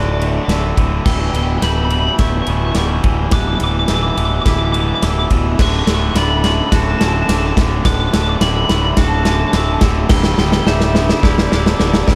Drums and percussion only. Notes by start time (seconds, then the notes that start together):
0.22 ride
0.49 snare, ride
0.77 kick, ride
1.06 kick, snare, crash
1.34 ride
1.62 snare, ride
1.90 ride
2.19 kick, snare, ride
2.46 ride
2.75 snare, ride
3.04 kick, ride
3.31 kick, snare, ride
3.60 ride
3.88 snare, ride
4.17 ride
4.46 kick, snare, ride
4.74 ride
5.02 snare, ride
5.30 kick, ride
5.59 kick, snare, crash
5.87 snare, ride
6.15 snare, ride
6.44 snare, ride
6.72 kick, snare, ride
7.01 snare, ride
7.29 snare, ride
7.57 kick, snare, ride
7.85 kick, snare, ride
8.13 snare, ride
8.41 snare, ride
8.69 snare, ride
8.97 kick, snare, ride
9.25 snare, ride
9.53 snare, ride
9.81 kick, snare, ride
10.09 kick, snare, crash
10.23 snare
10.38 snare
10.52 snare
10.67 snare
10.81 snare
10.95 snare
11.09 snare
11.23 kick, snare
11.38 snare
11.52 snare
11.66 snare
11.79 snare
11.94 snare
12.07 kick, snare